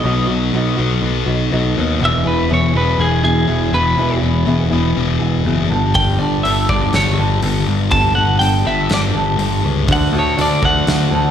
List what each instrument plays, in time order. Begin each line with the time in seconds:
Already playing: clean electric guitar D#5
0.03 picked electric bass B1, steel-string acoustic guitar B2 F#3 B3 D#4 F#4, distorted electric guitar B2 F#3 B3
0.27 picked electric bass B1, steel-string acoustic guitar B3 D#4 F#4
0.52 picked electric bass B1, distorted electric guitar B2 F#3 B3, steel-string acoustic guitar B2 F#3 B3 D#4 F#4
0.77 picked electric bass B1, distorted electric guitar B2 F#3 B3, steel-string acoustic guitar B3 D#4 F#4
1.01 picked electric bass B1, distorted electric guitar B2 F#3 B3
1.26 picked electric bass B1, steel-string acoustic guitar B3 D#4 F#4
1.51 picked electric bass B1, distorted electric guitar B2 F#3 B3, steel-string acoustic guitar F#3 B3 D#4 F#4
1.76 picked electric bass D#2, distorted electric guitar B2 F#3 B3
1.99 picked electric bass E1, steel-string acoustic guitar E2 B2 E3 B3 E4 G#4, distorted electric guitar E2 B2 E3
2.05 clean electric guitar E5
2.23 picked electric bass E1, steel-string acoustic guitar E3 B3 E4 G#4
2.27 clean electric guitar B4
2.48 picked electric bass E1, steel-string acoustic guitar E2 B2 E3 B3 E4 G#4, distorted electric guitar E2 B2 E3
2.54 clean electric guitar C#5
2.72 picked electric bass E1, distorted electric guitar E2 B2 E3, steel-string acoustic guitar E3 B3 E4 G#4
2.77 clean electric guitar B4
2.98 picked electric bass E1, distorted electric guitar E2 B2 E3, clean electric guitar G#4
3.22 picked electric bass E1, steel-string acoustic guitar E3 B3 E4 G#4, clean electric guitar G#4
3.47 picked electric bass E1, distorted electric guitar E2 B2 E3, steel-string acoustic guitar E3 B3 E4 G#4
3.72 picked electric bass E1, distorted electric guitar E2 B2 E3, clean electric guitar B4
3.96 picked electric bass E1, steel-string acoustic guitar E2 B2 E3 B3 E4 G#4, distorted electric guitar E2 B2 E3
4.21 picked electric bass E1, steel-string acoustic guitar E3 B3 E4 G#4
4.45 picked electric bass E1, steel-string acoustic guitar E2 B2 E3 B3 E4 G#4, distorted electric guitar E2 B2 E3
4.69 picked electric bass E1, distorted electric guitar E2 B2 E3, steel-string acoustic guitar E3 B3 E4 G#4
4.95 picked electric bass E1, distorted electric guitar E2 B2 E3
5.19 picked electric bass E1, steel-string acoustic guitar E3 B3 E4 G#4
5.44 picked electric bass F#1, distorted electric guitar E2 B2 E3, steel-string acoustic guitar E3 B3 E4 G#4
5.70 picked electric bass G1, distorted electric guitar G2 D3 G3, steel-string acoustic guitar G3 B3 D4 A4
5.94 picked electric bass G1, distorted electric guitar G2 D3 G3, steel-string acoustic guitar G3 B3 D4 A4, clean electric guitar G5, kick, open hi-hat
6.18 picked electric bass G1, steel-string acoustic guitar B3 D4 A4, clean electric guitar D5
6.43 picked electric bass G1, distorted electric guitar G2 D3 G3, steel-string acoustic guitar G3 B3 D4 A4, clean electric guitar E5, open hi-hat
6.68 picked electric bass G1, distorted electric guitar G2 D3 G3, steel-string acoustic guitar B3 D4 A4, clean electric guitar D5, kick
6.93 picked electric bass G1, distorted electric guitar G2 D3 G3, clean electric guitar C#5, snare, open hi-hat
7.16 picked electric bass G1, steel-string acoustic guitar B3 D4 A4
7.42 picked electric bass G1, distorted electric guitar G2 D3 G3, steel-string acoustic guitar G3 B3 D4 A4, open hi-hat
7.67 picked electric bass G1, distorted electric guitar G2 D3 G3
7.90 picked electric bass G1, distorted electric guitar G2 D3 G3, steel-string acoustic guitar G3 B3 D4 A4, clean electric guitar A5, kick, open hi-hat
8.15 picked electric bass G1, steel-string acoustic guitar B3 D4 A4, clean electric guitar F#5
8.39 picked electric bass G1, distorted electric guitar G2 D3 G3, steel-string acoustic guitar G3 B3 D4 A4, clean electric guitar G5, open hi-hat
8.64 picked electric bass G1, distorted electric guitar G2 D3 G3, steel-string acoustic guitar B3 D4 A4, clean electric guitar E5
8.89 picked electric bass G1, distorted electric guitar G2 D3 G3, snare, open hi-hat
8.94 clean electric guitar D5
9.13 picked electric bass G1, steel-string acoustic guitar B3 D4 A4
9.37 picked electric bass G1, distorted electric guitar G2 D3 G3, steel-string acoustic guitar G3 B3 D4 A4, open hi-hat
9.62 picked electric bass C#2, distorted electric guitar G2 D3 G3
9.88 picked electric bass D2, distorted electric guitar D3 A3 D4, steel-string acoustic guitar D3 D4 F#4 A4, kick, open hi-hat
9.93 clean electric guitar F#5
10.13 picked electric bass D2, steel-string acoustic guitar D4 F#4 A4
10.19 clean electric guitar C#5
10.37 picked electric bass D2, steel-string acoustic guitar D3 D4 F#4 A4, distorted electric guitar D3 A3 D4, open hi-hat
10.42 clean electric guitar D5
10.62 picked electric bass D2, distorted electric guitar D3 A3 D4, steel-string acoustic guitar D4 F#4 A4, clean electric guitar F#5, kick
10.86 picked electric bass D2, distorted electric guitar D3 A3 D4, snare, open hi-hat
11.11 picked electric bass D2, steel-string acoustic guitar D4 F#4 A4